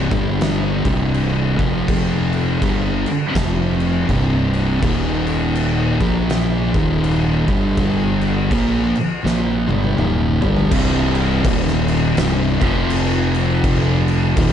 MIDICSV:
0, 0, Header, 1, 5, 480
1, 0, Start_track
1, 0, Key_signature, -3, "minor"
1, 0, Tempo, 735294
1, 1232, Time_signature, 4, 2, 24, 8
1, 9484, End_track
2, 0, Start_track
2, 0, Title_t, "Distorted electric guitar"
2, 0, Program_c, 0, 30
2, 0, Note_on_c, 0, 48, 100
2, 69, Note_off_c, 0, 48, 0
2, 70, Note_on_c, 0, 43, 98
2, 75, Note_on_c, 0, 50, 98
2, 79, Note_on_c, 0, 55, 112
2, 547, Note_off_c, 0, 43, 0
2, 549, Note_off_c, 0, 50, 0
2, 551, Note_off_c, 0, 55, 0
2, 558, Note_on_c, 0, 36, 87
2, 563, Note_on_c, 0, 43, 104
2, 567, Note_on_c, 0, 48, 108
2, 1032, Note_off_c, 0, 36, 0
2, 1035, Note_off_c, 0, 43, 0
2, 1035, Note_off_c, 0, 48, 0
2, 1037, Note_on_c, 0, 41, 92
2, 1043, Note_on_c, 0, 48, 87
2, 1048, Note_on_c, 0, 53, 97
2, 1707, Note_off_c, 0, 41, 0
2, 1710, Note_off_c, 0, 48, 0
2, 1710, Note_on_c, 0, 43, 99
2, 1712, Note_off_c, 0, 53, 0
2, 1716, Note_on_c, 0, 50, 91
2, 1720, Note_on_c, 0, 55, 93
2, 1994, Note_off_c, 0, 43, 0
2, 1997, Note_off_c, 0, 50, 0
2, 1998, Note_off_c, 0, 55, 0
2, 2190, Note_on_c, 0, 41, 92
2, 2197, Note_on_c, 0, 48, 105
2, 2200, Note_on_c, 0, 53, 111
2, 2669, Note_off_c, 0, 41, 0
2, 2672, Note_off_c, 0, 48, 0
2, 2674, Note_off_c, 0, 53, 0
2, 2675, Note_on_c, 0, 36, 100
2, 2680, Note_on_c, 0, 43, 107
2, 2683, Note_on_c, 0, 48, 89
2, 3147, Note_off_c, 0, 36, 0
2, 3150, Note_on_c, 0, 39, 96
2, 3153, Note_off_c, 0, 43, 0
2, 3156, Note_off_c, 0, 48, 0
2, 3156, Note_on_c, 0, 46, 105
2, 3159, Note_on_c, 0, 51, 110
2, 3915, Note_off_c, 0, 39, 0
2, 3915, Note_off_c, 0, 46, 0
2, 3920, Note_off_c, 0, 51, 0
2, 3923, Note_on_c, 0, 46, 92
2, 3927, Note_on_c, 0, 53, 102
2, 3929, Note_on_c, 0, 58, 98
2, 4397, Note_off_c, 0, 46, 0
2, 4399, Note_off_c, 0, 53, 0
2, 4400, Note_off_c, 0, 58, 0
2, 4407, Note_on_c, 0, 39, 99
2, 4414, Note_on_c, 0, 46, 94
2, 4414, Note_on_c, 0, 51, 118
2, 4879, Note_off_c, 0, 39, 0
2, 4882, Note_off_c, 0, 46, 0
2, 4882, Note_off_c, 0, 51, 0
2, 4885, Note_on_c, 0, 43, 86
2, 4890, Note_on_c, 0, 50, 96
2, 4895, Note_on_c, 0, 55, 93
2, 5548, Note_off_c, 0, 43, 0
2, 5550, Note_on_c, 0, 46, 102
2, 5551, Note_off_c, 0, 50, 0
2, 5554, Note_on_c, 0, 53, 90
2, 5555, Note_off_c, 0, 55, 0
2, 5559, Note_on_c, 0, 58, 101
2, 5834, Note_off_c, 0, 46, 0
2, 5835, Note_off_c, 0, 53, 0
2, 5838, Note_off_c, 0, 58, 0
2, 6029, Note_on_c, 0, 46, 87
2, 6035, Note_on_c, 0, 53, 92
2, 6040, Note_on_c, 0, 58, 104
2, 6311, Note_off_c, 0, 46, 0
2, 6314, Note_on_c, 0, 43, 86
2, 6315, Note_off_c, 0, 53, 0
2, 6318, Note_off_c, 0, 58, 0
2, 6318, Note_on_c, 0, 50, 104
2, 6324, Note_on_c, 0, 55, 103
2, 6504, Note_off_c, 0, 43, 0
2, 6506, Note_off_c, 0, 50, 0
2, 6509, Note_off_c, 0, 55, 0
2, 6512, Note_on_c, 0, 39, 76
2, 6517, Note_on_c, 0, 46, 88
2, 6522, Note_on_c, 0, 51, 100
2, 6793, Note_off_c, 0, 39, 0
2, 6795, Note_off_c, 0, 46, 0
2, 6798, Note_off_c, 0, 51, 0
2, 6805, Note_on_c, 0, 43, 74
2, 6811, Note_on_c, 0, 50, 90
2, 6815, Note_on_c, 0, 55, 96
2, 6988, Note_off_c, 0, 43, 0
2, 6991, Note_off_c, 0, 50, 0
2, 6993, Note_off_c, 0, 55, 0
2, 6997, Note_on_c, 0, 36, 91
2, 7001, Note_on_c, 0, 43, 118
2, 7006, Note_on_c, 0, 48, 117
2, 7467, Note_off_c, 0, 36, 0
2, 7469, Note_off_c, 0, 43, 0
2, 7471, Note_off_c, 0, 48, 0
2, 7479, Note_on_c, 0, 39, 100
2, 7487, Note_on_c, 0, 46, 112
2, 7488, Note_on_c, 0, 51, 103
2, 7947, Note_off_c, 0, 39, 0
2, 7949, Note_on_c, 0, 36, 95
2, 7950, Note_off_c, 0, 46, 0
2, 7951, Note_off_c, 0, 51, 0
2, 7959, Note_on_c, 0, 43, 96
2, 7959, Note_on_c, 0, 48, 126
2, 8228, Note_off_c, 0, 36, 0
2, 8232, Note_off_c, 0, 43, 0
2, 8232, Note_off_c, 0, 48, 0
2, 8240, Note_on_c, 0, 41, 109
2, 8243, Note_on_c, 0, 48, 109
2, 8249, Note_on_c, 0, 53, 111
2, 9377, Note_off_c, 0, 41, 0
2, 9379, Note_off_c, 0, 48, 0
2, 9381, Note_on_c, 0, 39, 104
2, 9382, Note_off_c, 0, 53, 0
2, 9388, Note_on_c, 0, 46, 108
2, 9388, Note_on_c, 0, 51, 110
2, 9484, Note_off_c, 0, 39, 0
2, 9484, Note_off_c, 0, 46, 0
2, 9484, Note_off_c, 0, 51, 0
2, 9484, End_track
3, 0, Start_track
3, 0, Title_t, "Distorted electric guitar"
3, 0, Program_c, 1, 30
3, 0, Note_on_c, 1, 43, 94
3, 66, Note_off_c, 1, 43, 0
3, 7461, Note_on_c, 1, 46, 82
3, 7937, Note_off_c, 1, 46, 0
3, 9484, End_track
4, 0, Start_track
4, 0, Title_t, "Fingered electric bass"
4, 0, Program_c, 2, 33
4, 74, Note_on_c, 2, 31, 94
4, 531, Note_off_c, 2, 31, 0
4, 558, Note_on_c, 2, 24, 97
4, 1015, Note_off_c, 2, 24, 0
4, 1041, Note_on_c, 2, 29, 89
4, 1688, Note_off_c, 2, 29, 0
4, 1709, Note_on_c, 2, 31, 89
4, 1981, Note_off_c, 2, 31, 0
4, 2191, Note_on_c, 2, 29, 90
4, 2649, Note_off_c, 2, 29, 0
4, 2672, Note_on_c, 2, 24, 96
4, 3130, Note_off_c, 2, 24, 0
4, 3152, Note_on_c, 2, 27, 87
4, 3899, Note_off_c, 2, 27, 0
4, 3922, Note_on_c, 2, 34, 95
4, 4379, Note_off_c, 2, 34, 0
4, 4403, Note_on_c, 2, 27, 88
4, 4859, Note_off_c, 2, 27, 0
4, 4886, Note_on_c, 2, 31, 90
4, 5531, Note_off_c, 2, 31, 0
4, 5558, Note_on_c, 2, 34, 93
4, 5826, Note_off_c, 2, 34, 0
4, 6036, Note_on_c, 2, 34, 97
4, 6304, Note_off_c, 2, 34, 0
4, 6329, Note_on_c, 2, 31, 85
4, 6504, Note_off_c, 2, 31, 0
4, 6518, Note_on_c, 2, 27, 95
4, 6784, Note_off_c, 2, 27, 0
4, 6810, Note_on_c, 2, 31, 90
4, 6983, Note_off_c, 2, 31, 0
4, 6997, Note_on_c, 2, 24, 86
4, 7446, Note_off_c, 2, 24, 0
4, 7473, Note_on_c, 2, 27, 105
4, 7923, Note_off_c, 2, 27, 0
4, 7944, Note_on_c, 2, 24, 105
4, 8213, Note_off_c, 2, 24, 0
4, 8240, Note_on_c, 2, 29, 88
4, 9357, Note_off_c, 2, 29, 0
4, 9385, Note_on_c, 2, 27, 109
4, 9484, Note_off_c, 2, 27, 0
4, 9484, End_track
5, 0, Start_track
5, 0, Title_t, "Drums"
5, 74, Note_on_c, 9, 49, 47
5, 75, Note_on_c, 9, 36, 106
5, 139, Note_off_c, 9, 49, 0
5, 140, Note_off_c, 9, 36, 0
5, 267, Note_on_c, 9, 49, 68
5, 274, Note_on_c, 9, 38, 114
5, 332, Note_off_c, 9, 49, 0
5, 339, Note_off_c, 9, 38, 0
5, 555, Note_on_c, 9, 49, 63
5, 556, Note_on_c, 9, 36, 111
5, 620, Note_off_c, 9, 49, 0
5, 621, Note_off_c, 9, 36, 0
5, 746, Note_on_c, 9, 49, 66
5, 811, Note_off_c, 9, 49, 0
5, 1038, Note_on_c, 9, 36, 98
5, 1039, Note_on_c, 9, 49, 52
5, 1104, Note_off_c, 9, 36, 0
5, 1105, Note_off_c, 9, 49, 0
5, 1229, Note_on_c, 9, 49, 88
5, 1230, Note_on_c, 9, 36, 112
5, 1294, Note_off_c, 9, 49, 0
5, 1295, Note_off_c, 9, 36, 0
5, 1519, Note_on_c, 9, 49, 55
5, 1585, Note_off_c, 9, 49, 0
5, 1710, Note_on_c, 9, 36, 114
5, 1710, Note_on_c, 9, 49, 84
5, 1775, Note_off_c, 9, 49, 0
5, 1776, Note_off_c, 9, 36, 0
5, 1999, Note_on_c, 9, 49, 56
5, 2064, Note_off_c, 9, 49, 0
5, 2188, Note_on_c, 9, 49, 81
5, 2189, Note_on_c, 9, 36, 110
5, 2195, Note_on_c, 9, 38, 124
5, 2253, Note_off_c, 9, 49, 0
5, 2255, Note_off_c, 9, 36, 0
5, 2260, Note_off_c, 9, 38, 0
5, 2481, Note_on_c, 9, 49, 63
5, 2547, Note_off_c, 9, 49, 0
5, 2670, Note_on_c, 9, 36, 100
5, 2673, Note_on_c, 9, 49, 70
5, 2736, Note_off_c, 9, 36, 0
5, 2738, Note_off_c, 9, 49, 0
5, 2960, Note_on_c, 9, 49, 56
5, 3026, Note_off_c, 9, 49, 0
5, 3150, Note_on_c, 9, 36, 115
5, 3150, Note_on_c, 9, 49, 84
5, 3215, Note_off_c, 9, 36, 0
5, 3215, Note_off_c, 9, 49, 0
5, 3438, Note_on_c, 9, 49, 56
5, 3504, Note_off_c, 9, 49, 0
5, 3626, Note_on_c, 9, 49, 82
5, 3691, Note_off_c, 9, 49, 0
5, 3920, Note_on_c, 9, 36, 105
5, 3920, Note_on_c, 9, 49, 52
5, 3985, Note_off_c, 9, 49, 0
5, 3986, Note_off_c, 9, 36, 0
5, 4111, Note_on_c, 9, 49, 73
5, 4118, Note_on_c, 9, 38, 109
5, 4176, Note_off_c, 9, 49, 0
5, 4183, Note_off_c, 9, 38, 0
5, 4402, Note_on_c, 9, 36, 115
5, 4404, Note_on_c, 9, 49, 55
5, 4467, Note_off_c, 9, 36, 0
5, 4469, Note_off_c, 9, 49, 0
5, 4595, Note_on_c, 9, 49, 69
5, 4660, Note_off_c, 9, 49, 0
5, 4883, Note_on_c, 9, 36, 98
5, 4885, Note_on_c, 9, 49, 53
5, 4949, Note_off_c, 9, 36, 0
5, 4951, Note_off_c, 9, 49, 0
5, 5075, Note_on_c, 9, 36, 101
5, 5076, Note_on_c, 9, 49, 75
5, 5140, Note_off_c, 9, 36, 0
5, 5141, Note_off_c, 9, 49, 0
5, 5362, Note_on_c, 9, 49, 58
5, 5427, Note_off_c, 9, 49, 0
5, 5556, Note_on_c, 9, 36, 118
5, 5560, Note_on_c, 9, 49, 80
5, 5621, Note_off_c, 9, 36, 0
5, 5625, Note_off_c, 9, 49, 0
5, 5846, Note_on_c, 9, 49, 55
5, 5911, Note_off_c, 9, 49, 0
5, 6047, Note_on_c, 9, 38, 65
5, 6112, Note_off_c, 9, 38, 0
5, 6327, Note_on_c, 9, 48, 77
5, 6393, Note_off_c, 9, 48, 0
5, 6422, Note_on_c, 9, 48, 64
5, 6487, Note_off_c, 9, 48, 0
5, 6517, Note_on_c, 9, 47, 82
5, 6582, Note_off_c, 9, 47, 0
5, 6802, Note_on_c, 9, 43, 96
5, 6868, Note_off_c, 9, 43, 0
5, 6897, Note_on_c, 9, 43, 89
5, 6962, Note_off_c, 9, 43, 0
5, 6994, Note_on_c, 9, 36, 127
5, 6995, Note_on_c, 9, 49, 99
5, 6995, Note_on_c, 9, 57, 127
5, 7060, Note_off_c, 9, 36, 0
5, 7060, Note_off_c, 9, 49, 0
5, 7060, Note_off_c, 9, 57, 0
5, 7278, Note_on_c, 9, 49, 61
5, 7343, Note_off_c, 9, 49, 0
5, 7472, Note_on_c, 9, 36, 127
5, 7473, Note_on_c, 9, 49, 102
5, 7537, Note_off_c, 9, 36, 0
5, 7538, Note_off_c, 9, 49, 0
5, 7621, Note_on_c, 9, 38, 32
5, 7686, Note_off_c, 9, 38, 0
5, 7757, Note_on_c, 9, 49, 69
5, 7822, Note_off_c, 9, 49, 0
5, 7945, Note_on_c, 9, 49, 92
5, 7952, Note_on_c, 9, 38, 119
5, 8010, Note_off_c, 9, 49, 0
5, 8018, Note_off_c, 9, 38, 0
5, 8233, Note_on_c, 9, 49, 71
5, 8236, Note_on_c, 9, 36, 115
5, 8298, Note_off_c, 9, 49, 0
5, 8301, Note_off_c, 9, 36, 0
5, 8422, Note_on_c, 9, 49, 88
5, 8487, Note_off_c, 9, 49, 0
5, 8712, Note_on_c, 9, 49, 55
5, 8777, Note_off_c, 9, 49, 0
5, 8903, Note_on_c, 9, 36, 115
5, 8904, Note_on_c, 9, 49, 93
5, 8969, Note_off_c, 9, 36, 0
5, 8969, Note_off_c, 9, 49, 0
5, 9191, Note_on_c, 9, 49, 59
5, 9256, Note_off_c, 9, 49, 0
5, 9378, Note_on_c, 9, 49, 107
5, 9381, Note_on_c, 9, 36, 121
5, 9443, Note_off_c, 9, 49, 0
5, 9446, Note_off_c, 9, 36, 0
5, 9484, End_track
0, 0, End_of_file